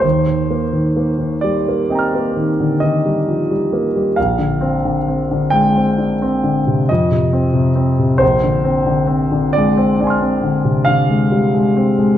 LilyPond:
<<
  \new Staff \with { instrumentName = "Grand piano" } { \time 9/8 \key bes \mixolydian \tempo 4. = 44 << { r2 <ees'' g'' bes'' f'''>2~ <ees'' g'' bes'' f'''>8 | r1 r8 | r2 <d'' aes'' c''' f'''>2~ <d'' aes'' c''' f'''>8 | } \\ { c''4. d''4. ees''4. | f''4. g''4. ees''4. | c''4. d''4. f''4. | } >> }
  \new Staff \with { instrumentName = "Grand piano" } { \clef bass \time 9/8 \key bes \mixolydian ees,16 ees16 bes16 ees16 bes16 ees16 g16 bes16 c'16 bes16 ees16 d16 ees16 g16 f16 g16 bes16 g16 | bes,,16 d16 c'16 d16 c'16 d16 aes16 c'16 d'16 c'16 d16 c16 f,16 c16 c'16 c16 c'16 c16 | bes,,16 d16 c'16 d16 c'16 d16 aes16 c'16 d'16 c'16 d16 c16 d16 aes16 g16 aes16 c'16 aes16 | }
>>